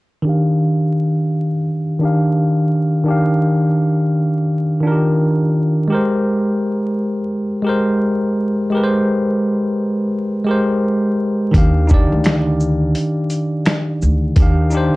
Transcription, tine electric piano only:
0.22 1.51 D#3 medium
0.22 1.52 D4 medium
0.27 1.53 G4 medium
0.27 1.54 F5 medium
1.99 2.96 D#3 medium
1.99 2.97 D4 medium
2.03 2.98 G4 medium
2.03 2.99 F5 medium
3.04 4.33 D#3 medium
3.04 4.34 D4 medium
3.08 4.35 G4 medium
3.08 4.36 F5 medium
4.81 5.78 D#3 medium
4.81 5.79 D4 medium
4.85 4.92 F4 soft
4.85 5.81 A#4 medium
4.91 5.83 G4 medium
5.88 7.16 G#3 medium
5.88 7.17 G4 medium
5.92 7.18 A#4 medium
5.92 7.19 C5 medium
7.62 8.60 G#3 medium
7.62 8.61 G4 medium
7.67 8.62 A#4 medium
7.67 8.63 C5 medium
8.70 9.99 G#3 medium
8.70 9.99 G4 medium
8.75 10.01 A#4 medium
8.75 8.82 B4 medium
8.84 10.05 C5 medium
10.44 11.42 G#3 medium
10.44 11.43 G4 medium
10.48 11.44 A#4 medium
10.48 11.45 C5 medium
11.51 11.85 D#3 medium
11.51 11.86 D4 medium
11.51 11.87 G4 medium
11.58 11.88 F5 medium
11.87 13.17 D4 medium
11.87 13.16 D#4 medium
11.91 13.18 G4 medium
11.91 13.19 D5 medium
14.36 14.68 D#3 medium
14.36 14.69 D4 medium
14.40 14.70 G4 medium
14.40 14.71 F5 medium
14.70 14.96 D4 medium
14.70 14.96 D#4 medium
14.75 14.96 G4 medium
14.75 14.96 C5 medium

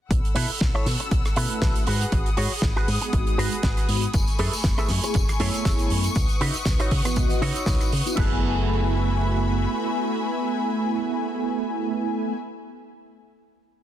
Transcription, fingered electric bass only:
0.11 0.19 B1 medium
0.36 0.44 B2 medium
0.49 muted fingered electric bass stroke soft
0.61 0.70 B1 medium
0.86 0.95 B2 medium
1.11 1.20 B1 medium
1.37 1.45 B2 medium
1.50 muted fingered electric bass stroke soft
1.62 1.70 B1 medium
1.87 2.04 G#2 medium
2.12 2.21 G#1 medium
2.37 2.46 G#2 medium
2.51 muted fingered electric bass stroke soft
2.63 2.71 G#1 medium
2.88 2.97 G#2 medium
3.13 3.22 G#1 medium
3.38 3.47 G#2 medium
3.52 muted fingered electric bass stroke soft
3.64 3.72 G#1 medium
3.88 4.05 G#2 medium
4.14 4.23 F#1 medium
4.39 4.48 F#2 medium
4.53 muted fingered electric bass stroke soft
4.64 4.73 F#1 medium
4.90 4.98 F#2 medium
5.15 5.23 F#1 medium
5.40 5.49 F#2 medium
5.54 muted fingered electric bass stroke soft
5.65 5.74 F#1 medium
5.91 6.07 F#2 medium
6.16 6.24 C#2 medium
6.41 6.50 C#3 medium
6.55 muted fingered electric bass stroke soft
6.66 6.75 C#2 medium
6.91 7.00 C#3 medium
7.17 7.25 C#2 medium
7.42 7.50 C#3 medium
7.56 muted fingered electric bass stroke soft
7.67 7.76 C#2 medium
7.92 8.01 C#3 medium
8.17 9.65 F#1 medium

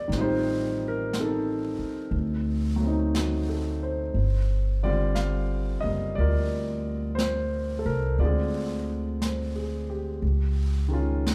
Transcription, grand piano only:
0.00 0.13 C4 soft
0.00 0.11 F4 medium
0.00 0.10 G4 medium
0.00 0.14 D5 medium
0.00 0.14 D#5 medium
0.08 2.11 D#3 soft
0.08 2.13 G3 soft
0.14 1.18 C4 soft
0.18 1.18 D#4 medium
0.18 2.16 F4 medium
0.18 2.13 G4 medium
0.18 0.80 C5 medium
0.88 1.18 A#4 medium
1.19 2.82 C4 soft
1.19 2.86 D#4 soft
1.19 3.48 A4 medium
2.76 4.12 F#3 soft
2.80 4.14 A3 soft
2.80 4.16 C4 soft
2.87 4.18 D#4 soft
3.15 3.77 F#4 soft
3.49 4.00 A4 soft
3.83 4.34 C5 soft
4.83 8.19 D3 soft
4.83 5.80 G3 soft
4.83 8.19 C4 soft
4.83 6.19 F4 medium
4.83 5.14 D5 medium
5.15 5.79 F5 medium
5.81 8.18 G3 soft
5.81 8.19 A#3 soft
5.81 6.16 D#5 medium
6.15 7.20 D5 medium
6.20 8.17 F4 soft
6.20 7.84 A#4 medium
7.15 7.76 C5 medium
7.79 7.87 A4 medium
7.86 8.20 A#4 medium
8.20 10.23 D3 soft
8.20 10.23 G#3 soft
8.20 10.23 C4 soft
8.20 8.23 F4 medium
8.20 9.85 D5 medium
8.25 10.21 F4 soft
8.25 9.54 G#4 soft
9.23 9.86 C5 soft
9.56 10.08 G#4 soft
9.90 10.42 G4 soft
10.88 11.35 D#3 soft
10.88 11.35 G#3 soft
10.88 11.35 C#4 soft
10.93 11.35 F4 medium

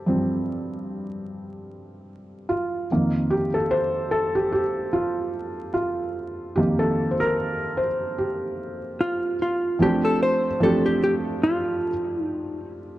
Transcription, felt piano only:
0.00 0.06 G2 soft
0.00 0.07 F3 soft
0.00 0.08 C4 soft
0.00 2.91 G4 medium
0.00 2.91 A4 medium
0.06 2.86 G2 medium
0.06 2.86 F3 soft
0.06 2.86 C4 medium
2.49 3.32 F4 medium
2.91 3.46 F2 medium
2.91 3.47 D#3 soft
2.91 3.47 A#3 medium
3.30 3.54 G4 medium
3.54 3.71 A4 medium
3.71 4.08 C5 medium
4.11 4.35 A4 medium
4.35 4.51 G4 medium
4.52 4.61 G4 medium
4.93 5.72 F4 medium
5.74 6.57 F4 medium
6.56 9.75 F2 medium
6.56 9.76 D#3 soft
6.56 9.76 A#3 medium
6.56 6.79 G4 medium
6.79 7.12 A4 medium
7.11 7.18 C5 medium
7.20 7.79 A#4 medium
7.77 7.86 C5 medium
8.18 9.35 G4 medium
9.79 10.45 F3 medium
9.79 10.45 A3 medium
9.79 10.46 C4 medium
9.79 10.46 D4 medium
9.84 10.47 G4 medium
10.60 11.88 F3 medium
10.60 11.88 A3 medium
10.60 11.89 C4 medium
10.60 11.89 D4 medium
10.64 11.90 G4 medium

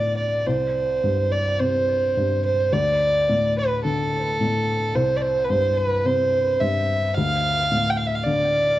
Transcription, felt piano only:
0.00 0.42 D2 soft
0.00 0.47 A2 soft
0.00 0.42 D3 soft
0.46 2.68 C2 soft
1.04 2.15 G2 soft
1.60 2.69 C3 soft
2.17 2.71 G2 soft
2.72 4.89 D2 soft
3.29 4.39 A2 soft
3.85 4.90 D3 soft
4.41 4.93 A2 soft
4.95 7.12 C2 medium
5.50 6.59 G2 soft
6.05 7.13 C3 soft
6.61 7.14 G2 soft
7.17 8.79 D2 medium
7.71 8.79 A2 soft
8.26 8.79 D3 soft

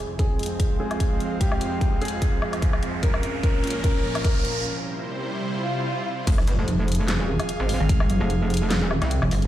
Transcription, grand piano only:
0.19 0.72 G#4 medium
0.80 1.33 G#4 medium
1.41 1.94 G4 medium
2.01 2.55 G#4 medium
3.03 3.33 A#4 medium
3.43 3.82 A#4 medium
3.84 4.14 A#4 medium
4.25 4.64 A#4 medium

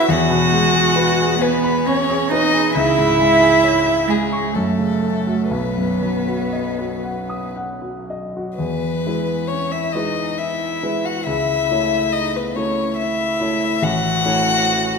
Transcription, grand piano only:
0.00 0.13 F#4 medium
0.00 0.13 A4 medium
0.00 0.13 B4 medium
0.00 0.13 F#5 medium
0.00 0.13 B5 medium
0.09 2.70 E2 medium
0.30 0.65 B2 medium
0.52 0.88 G#3 medium
0.74 1.10 G#4 medium
0.96 1.32 B4 medium
1.19 1.55 G#4 medium
1.42 1.78 G#5 medium
1.64 2.00 B5 medium
1.87 2.22 G#5 medium
2.10 2.45 G#4 medium
2.32 2.67 B4 medium
2.53 2.75 G#4 medium
2.75 4.51 C#2 medium
2.98 3.33 G#2 medium
3.20 3.55 G#3 medium
3.41 3.77 G#4 medium
3.63 4.00 C#5 medium
3.86 4.23 G#4 medium
4.09 4.46 G#5 medium
4.32 4.55 C#6 medium
4.56 5.48 F#2 medium
4.79 5.16 C#3 soft
5.02 5.41 A3 soft
5.27 5.52 F#4 soft
5.51 8.55 B1 medium
5.77 6.18 F#2 soft
6.02 6.43 F#3 soft
6.27 6.68 F#4 soft
6.53 6.94 D#5 soft
6.79 7.20 F#4 soft
7.03 7.45 F#5 soft
7.29 7.71 D#6 soft
7.56 7.98 F#5 soft
7.82 8.24 F#4 soft
8.10 8.50 D#5 soft
8.37 8.60 F#4 soft
8.59 9.04 E2 medium
9.06 9.91 G#3 soft
9.06 9.91 E4 soft
9.06 9.91 B4 soft
9.95 10.79 G#3 soft
9.95 10.80 E4 soft
9.95 10.79 B4 soft
10.83 11.24 G#3 soft
10.83 11.24 E4 soft
10.83 11.24 B4 soft
11.27 11.70 C#2 medium
11.71 12.53 A3 soft
11.71 12.53 E4 soft
11.71 12.53 C#5 soft
12.56 13.37 A3 soft
12.56 13.37 E4 soft
12.56 13.37 C#5 soft
13.41 13.79 A3 soft
13.41 13.79 E4 soft
13.41 13.80 C#5 soft
13.82 14.24 A1 medium
14.25 14.98 A3 soft
14.25 14.98 E4 soft
14.25 14.98 C#5 medium

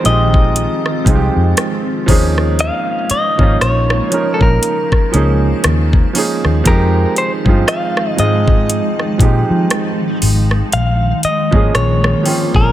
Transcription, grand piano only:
0.00 0.03 F3 medium
0.00 0.99 F3 medium
0.00 0.04 G#3 medium
0.00 0.99 G#3 medium
0.00 0.05 C4 medium
0.00 0.06 D#4 medium
0.00 0.07 G4 loud
0.00 2.10 A#4 medium
0.05 1.00 C4 medium
0.05 1.01 D#4 medium
0.05 1.01 G4 medium
1.04 2.05 F3 medium
1.04 2.08 G#3 medium
1.04 2.08 C4 medium
1.04 2.08 D#4 medium
1.09 1.15 F4 medium
1.15 2.13 G4 medium
2.06 3.27 F3 medium
2.06 3.28 A#3 medium
2.06 3.28 C#4 medium
2.06 3.29 D#4 medium
2.11 3.29 G#4 loud
3.38 4.06 F3 medium
3.38 4.06 A#3 medium
3.38 4.07 C#4 medium
3.38 4.07 D#4 medium
3.42 4.08 F4 medium
4.10 5.06 F3 medium
4.10 5.06 A#3 medium
4.10 5.07 C#4 medium
4.10 5.07 D#4 medium
4.14 5.08 A#4 medium
5.11 6.07 F3 medium
5.11 6.08 A#3 medium
5.11 6.09 C#4 medium
5.11 6.09 D#4 medium
5.16 6.10 G#4 medium
6.13 6.62 F3 medium
6.13 6.62 A#3 medium
6.13 6.63 C#4 medium
6.13 6.63 D#4 medium
6.18 6.64 G#4 medium
6.64 7.38 F3 loud
6.64 7.39 G#3 medium
6.64 7.39 C4 medium
6.64 7.40 D#4 medium
6.68 7.41 G4 loud
7.44 8.12 F3 medium
7.44 8.13 G#3 medium
7.44 8.14 C4 medium
7.44 8.14 D#4 medium
7.49 8.15 F4 medium
8.16 9.12 F3 medium
8.16 9.13 G#3 medium
8.16 9.14 C4 medium
8.16 9.14 D#4 medium
8.21 9.15 F4 medium
9.18 10.71 F3 medium
9.18 10.72 G#3 medium
9.18 10.72 C4 medium
9.18 10.73 D#4 medium
9.22 10.74 G4 medium
11.51 12.19 F3 medium
11.51 12.20 G#3 medium
11.51 12.20 A#3 medium
11.51 12.21 C#4 medium
11.56 12.21 G#4 medium
12.23 12.72 F3 medium
12.23 12.72 A#3 medium
12.23 12.72 C4 medium
12.23 12.72 C#4 medium
12.27 12.72 F4 medium

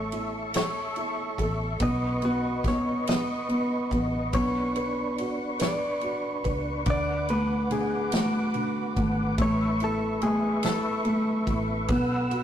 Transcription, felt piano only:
0.00 1.76 A3 medium
0.00 0.53 A4 medium
0.13 0.95 E4 medium
0.55 1.37 A4 medium
0.97 1.78 E4 medium
1.39 1.79 A4 medium
1.80 2.21 B3 medium
2.23 2.64 B3 medium
2.66 3.07 B3 medium
3.08 3.47 B3 medium
3.49 3.90 B3 medium
3.92 4.32 B3 medium
4.33 6.82 B3 medium
4.77 5.58 B4 medium
5.18 6.00 F#4 medium
5.60 6.43 B4 medium
6.02 6.84 F#4 soft
6.45 6.85 B4 medium
6.86 7.69 D3 medium
7.30 8.11 A3 medium
7.70 8.53 D3 medium
8.13 8.96 A3 medium
8.55 9.36 D3 medium
8.97 9.37 A3 medium
9.38 10.21 A3 medium
9.82 10.63 E4 medium
10.22 11.03 A3 medium
10.65 11.45 E4 medium
11.05 11.86 A3 medium
11.47 11.87 E4 medium
11.89 12.44 B3 medium
12.31 12.44 F#4 medium

